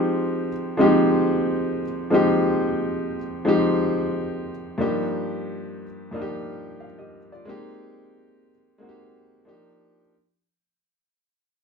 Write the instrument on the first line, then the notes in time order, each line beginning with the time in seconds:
grand piano
Already playing: F3 G#3 C4 D#4 G4
0.77 F3 G#3 C4 D#4 G4
2.10 F3 G#3 C4 D#4
2.14 G4
3.45 F3 G#3 C4 D#4 G4
4.78 G2 F3 A#3 D4 D#4 G4
6.11 G2 F3 A#3 D4 D#4
6.16 F4
6.22 G4
6.80 F5
6.99 G4 D#5
7.32 F4 D5
7.45 G#3 A#3 C4 D#4 G4
8.78 G#3 A#3 C4 D#4
8.82 F#4
8.89 G4
9.45 F3 A#3 D4 D#4 G4